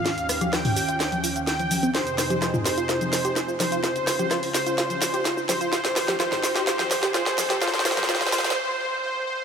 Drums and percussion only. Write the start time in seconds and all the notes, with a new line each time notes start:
0.06 snare, closed hi-hat, shaker
0.18 closed hi-hat, shaker
0.29 cross-stick, open hi-hat, shaker
0.41 closed hi-hat, high conga, shaker
0.53 cross-stick, snare, closed hi-hat, shaker
0.65 mid tom, open hi-hat, shaker
0.76 open hi-hat, shaker
0.89 closed hi-hat, shaker
1.00 snare, closed hi-hat, shaker
1.12 closed hi-hat, high conga, shaker
1.24 open hi-hat, shaker
1.36 closed hi-hat, shaker
1.47 snare, closed hi-hat, shaker
1.59 closed hi-hat, shaker
1.71 open hi-hat, high conga, shaker
1.83 closed hi-hat, shaker
1.95 snare, closed hi-hat, shaker
2.07 closed hi-hat, shaker
2.18 cross-stick, snare, open hi-hat, shaker
2.30 closed hi-hat, high conga, shaker
2.42 cross-stick, snare, closed hi-hat, shaker
2.54 mid tom, shaker
2.65 snare, open hi-hat, shaker
2.78 closed hi-hat, shaker
2.89 snare, closed hi-hat, shaker
3.01 closed hi-hat, high conga, shaker
3.13 snare, open hi-hat, shaker
3.25 closed hi-hat, shaker
3.36 snare, closed hi-hat, shaker
3.49 shaker
3.60 snare, open hi-hat, high conga, shaker
3.72 closed hi-hat, shaker
3.84 snare, closed hi-hat, shaker
3.96 closed hi-hat, shaker
4.07 cross-stick, snare, open hi-hat, shaker
4.19 closed hi-hat, high conga, shaker
4.31 cross-stick, snare, closed hi-hat, shaker
4.43 open hi-hat, shaker
4.54 snare, open hi-hat, shaker
4.66 closed hi-hat, shaker
4.78 snare, closed hi-hat, shaker
4.90 closed hi-hat, high conga, shaker
5.02 snare, open hi-hat, shaker
5.14 closed hi-hat, shaker
5.25 snare, closed hi-hat, shaker
5.38 shaker
5.49 snare, open hi-hat, high conga, shaker
5.61 closed hi-hat, shaker
5.73 snare, closed hi-hat, shaker
5.85 snare, closed hi-hat, shaker
5.96 cross-stick, snare, open hi-hat, shaker
6.08 snare, closed hi-hat, high conga, shaker
6.20 cross-stick, snare, closed hi-hat, shaker
6.32 snare, mid tom, shaker
6.43 snare, open hi-hat, shaker
6.56 snare, closed hi-hat, shaker
6.67 snare, closed hi-hat, shaker
6.79 snare, closed hi-hat, high conga, shaker
6.91 snare, open hi-hat, shaker
7.03 snare, closed hi-hat, shaker
7.14 snare, closed hi-hat, shaker
7.26 snare, shaker
7.38 snare, open hi-hat, high conga, shaker
7.50 snare, closed hi-hat, shaker
7.62 snare, closed hi-hat, shaker
7.68 snare
7.74 snare, closed hi-hat, shaker
7.79 snare
7.85 cross-stick, snare, open hi-hat, shaker
7.91 snare
7.97 snare, closed hi-hat, high conga, shaker
8.03 snare
8.09 cross-stick, snare, closed hi-hat, shaker
8.15 snare
8.21 snare, mid tom, open hi-hat, shaker
8.27 snare
8.32 snare, open hi-hat, shaker
8.38 snare
8.44 snare, closed hi-hat, shaker
8.50 snare